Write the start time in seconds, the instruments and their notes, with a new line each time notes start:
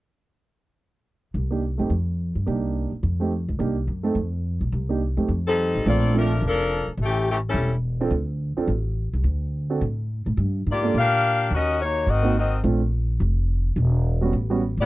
1.34 upright bass C2
1.51 grand piano A#3 D4 D#4 G4
1.78 upright bass F#2, grand piano A3 C4 D#4 G4
1.90 upright bass F2
2.35 upright bass G2
2.46 upright bass C2, grand piano A#3 D4 D#4 G4
2.92 muted upright bass stroke
3.03 upright bass F2
3.20 grand piano A3 C4 D#4 G4
3.48 upright bass C#2
3.59 upright bass C2, grand piano A#3 D4 D#4 G4
3.87 upright bass F#2
4.03 grand piano A3 C4 D#4 A4
4.15 upright bass F2
4.61 upright bass B1
4.72 upright bass C2
4.89 grand piano A#3 D4 D#4 G4
5.17 upright bass F#2, grand piano A3 C4 D#4 G4
5.28 upright bass F2
5.47 saxophone section G3 C4 D#4 A4
5.75 upright bass A1
5.85 upright bass A#1, grand piano A3 C4 D4 F4, saxophone section A#3 F4 A4 D5
6.13 grand piano A3 C4 D4 F4
6.17 saxophone section F3 A3 D4 A#4
6.42 upright bass F1
6.47 saxophone section F3 D4 A4 A#4
6.87 muted upright bass stroke
6.97 upright bass A1
7.02 saxophone section E3 A3 C#4 G4
7.30 saxophone section E3 A3 C#4 G4
7.47 saxophone section G3 C#4 E4 A4
7.54 upright bass E1
8.01 grand piano C4 D4 F4 A4
8.10 upright bass D2
8.57 grand piano C4 D4 F4 A4, muted upright bass stroke
8.67 upright bass A1
9.13 upright bass C2
9.24 upright bass D2
9.70 grand piano C4 D4 F#4 A4
9.81 upright bass A2
10.26 upright bass A2
10.37 upright bass G2
10.67 upright bass G#2, saxophone section A#3
10.71 saxophone section F4 G4 D5
10.83 grand piano A#3 D4 F4 A4
10.94 upright bass A#2, saxophone section A#4 F5
10.99 saxophone section D4 G4
11.51 upright bass D#2, saxophone section C#4 F#4 D#5
11.55 saxophone section A#4
11.82 saxophone section A#3 D#4 F#4 C#5
12.07 upright bass G#1, saxophone section C4 F#4 A#4 D#5
12.23 grand piano A#3 C4 D#4 F#4
12.38 saxophone section C4 F#4 A#4 D#5
12.63 upright bass A#1, grand piano A3 C4 D4 F4
13.20 upright bass F1
13.76 upright bass E1
14.21 grand piano G3 B3 C#4 F#4
14.33 upright bass A1
14.50 grand piano G3 B3 C#4 F#4
14.77 upright bass A2, saxophone section B3 E4 G4 D5